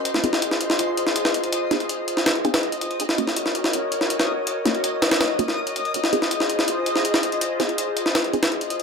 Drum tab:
HH |x-x-x-x-x-x-x-xx|x-xxx-x-xxxxxxxx|x-x-x-x-x-x-x---|x-xxx-xxx-x--xxx|
SD |-o-o-o-o---o-o--|--o----oo--o----|-o-o-o-o---o-o--|--o---ooo--o----|

HH |x-x-x-x-x-x-x-xx|x-xxx-x-xxxxxxxx|
SD |-o-o-o-o---o-o--|--o----oo--o----|